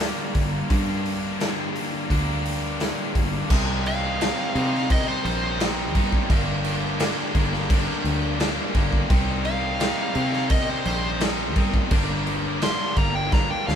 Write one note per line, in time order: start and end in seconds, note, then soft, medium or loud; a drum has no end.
0.00 0.68 G2 medium
0.00 0.68 D3 medium
0.00 0.70 G3 medium
0.00 0.69 A#3 medium
0.00 0.71 D4 medium
0.00 snare loud
0.00 open hi-hat medium
0.35 0.62 G1 medium
0.35 kick medium
0.35 open hi-hat medium
0.69 2.08 G2 medium
0.69 1.77 G2 loud
0.69 2.08 D3 medium
0.69 2.08 G3 medium
0.69 2.09 A#3 medium
0.69 2.09 D4 loud
0.69 kick loud
0.69 open hi-hat medium
1.06 open hi-hat medium
1.40 snare loud
1.40 open hi-hat medium
1.76 open hi-hat medium
2.09 2.90 D2 medium
2.09 3.48 G2 medium
2.09 3.48 D3 medium
2.09 3.48 G3 medium
2.09 3.49 A#3 medium
2.09 3.49 D4 loud
2.09 kick medium
2.09 open hi-hat medium
2.46 open hi-hat medium
2.80 snare loud
2.80 open hi-hat medium
3.15 3.42 G1 medium
3.15 kick medium
3.15 open hi-hat medium
3.50 4.30 C2 loud
3.50 4.18 C3 loud
3.50 4.19 G3 loud
3.50 4.19 C4 loud
3.50 4.19 D#4 loud
3.50 kick loud
3.50 crash loud
3.50 crash medium
3.86 4.88 F5 loud
3.86 crash medium
4.19 4.54 C3 loud
4.19 4.55 G3 medium
4.19 4.54 C4 loud
4.19 4.55 D#4 loud
4.19 snare loud
4.19 crash medium
4.55 4.89 C3 medium
4.55 5.26 C3 loud
4.55 4.90 G3 medium
4.55 4.89 C4 medium
4.55 4.90 D#4 medium
4.55 crash medium
4.75 snare soft
4.90 5.58 C3 loud
4.90 5.60 G3 loud
4.90 5.59 C4 loud
4.90 5.60 D#4 loud
4.90 5.08 D#5 medium
4.90 kick loud
4.90 crash loud
5.08 5.25 C5 medium
5.25 5.95 A#1 medium
5.25 5.60 C5 medium
5.25 crash medium
5.60 5.94 C3 loud
5.60 5.95 G3 medium
5.60 5.95 C4 loud
5.60 5.95 D#4 medium
5.60 snare loud
5.60 crash medium
5.95 6.22 G2 loud
5.95 6.28 C3 medium
5.95 6.30 G3 medium
5.95 6.28 C4 medium
5.95 6.29 D#4 loud
5.95 kick medium
5.95 crash medium
6.12 kick medium
6.30 7.10 G1 loud
6.30 6.98 G2 loud
6.30 6.99 D3 loud
6.30 7.00 G3 loud
6.30 7.00 A#3 loud
6.30 7.01 D4 loud
6.30 kick loud
6.30 crash medium
6.64 crash medium
7.00 7.34 G2 loud
7.00 7.34 D3 loud
7.00 7.35 G3 loud
7.00 7.35 A#3 loud
7.00 7.36 D4 loud
7.00 snare loud
7.00 crash medium
7.35 7.88 G1 loud
7.35 7.68 G2 medium
7.35 7.69 D3 medium
7.35 7.70 G3 medium
7.35 7.70 A#3 medium
7.35 7.70 D4 medium
7.35 kick medium
7.35 crash medium
7.54 snare soft
7.70 8.38 G2 loud
7.70 8.39 D3 loud
7.70 8.40 G3 loud
7.70 8.39 A#3 loud
7.70 8.40 D4 loud
7.70 kick loud
7.70 crash medium
8.04 8.58 D2 medium
8.04 crash medium
8.39 8.73 G2 loud
8.39 8.73 D3 loud
8.39 8.75 G3 loud
8.39 8.74 A#3 loud
8.39 8.75 D4 loud
8.39 snare loud
8.39 crash medium
8.74 9.02 G1 loud
8.74 9.08 G2 medium
8.74 9.08 D3 medium
8.74 9.09 G3 medium
8.74 9.09 A#3 medium
8.74 9.10 D4 loud
8.74 kick medium
8.74 crash medium
8.93 kick medium
9.09 9.90 C2 loud
9.09 9.79 C3 loud
9.09 9.80 G3 medium
9.09 9.80 C4 loud
9.09 9.80 D#4 loud
9.09 kick loud
9.09 crash medium
9.45 10.48 F5 loud
9.45 crash medium
9.80 10.13 C3 loud
9.80 10.15 G3 loud
9.80 10.14 C4 loud
9.80 10.15 D#4 loud
9.80 snare loud
9.80 crash medium
10.15 10.49 C3 medium
10.15 10.87 C3 loud
10.15 10.50 G3 medium
10.15 10.49 C4 loud
10.15 10.50 D#4 medium
10.15 crash medium
10.33 snare soft
10.50 11.20 C3 loud
10.50 11.21 G3 loud
10.50 11.20 C4 loud
10.50 11.20 D#4 loud
10.50 10.70 D#5 medium
10.50 kick loud
10.50 crash loud
10.70 10.86 C5 medium
10.85 11.56 A#1 medium
10.85 11.20 C5 loud
10.85 crash medium
11.21 11.55 C3 medium
11.21 11.57 G3 loud
11.21 11.56 C4 loud
11.21 11.57 D#4 loud
11.21 snare loud
11.21 crash medium
11.56 11.83 G2 loud
11.56 11.89 C3 medium
11.56 11.92 G3 medium
11.56 11.90 C4 medium
11.56 11.90 D#4 medium
11.56 kick medium
11.56 crash medium
11.74 kick medium
11.91 12.71 G1 loud
11.91 12.61 G2 medium
11.91 12.61 D3 medium
11.91 12.62 G3 loud
11.91 12.62 A#3 loud
11.91 12.62 D4 loud
11.91 kick loud
11.91 crash loud
12.27 crash medium
12.62 12.96 G2 medium
12.62 12.97 D3 loud
12.62 12.97 G3 loud
12.62 12.97 A#3 loud
12.62 12.98 D4 loud
12.62 12.97 C6 loud
12.62 snare loud
12.62 crash medium
12.96 13.50 G1 loud
12.96 13.32 G2 medium
12.96 13.32 D3 medium
12.96 13.32 G3 medium
12.96 13.33 A#3 medium
12.96 13.33 D4 medium
12.96 13.15 A#5 loud
12.96 kick medium
12.96 crash medium
13.15 13.33 G5 medium
13.32 13.75 G2 loud
13.32 13.75 D3 loud
13.32 13.75 G3 loud
13.32 13.75 A#3 loud
13.32 13.75 D4 loud
13.32 13.49 A#5 loud
13.32 kick loud
13.32 snare medium
13.50 13.67 G5 medium
13.67 13.75 D2 medium
13.67 13.75 F5 medium
13.67 snare medium